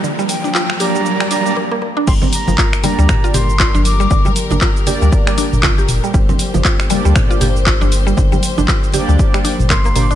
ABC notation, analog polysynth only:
X:1
M:4/4
L:1/16
Q:"Swing 16ths" 1/4=118
K:Gm
V:1 name="Analog polysynth"
z6 [B,DGd]4- [B,DGd] [B,DGd] z4 | z6 [B,DGd]4- [B,DGd] z4 z | z6 [B,DGd]4- [B,DGd] z4 z | z6 [B,DGd]4- [B,DGd] z4 z |
z6 [B,DGd]4- [B,DGd] z3 [B,DGd] z |]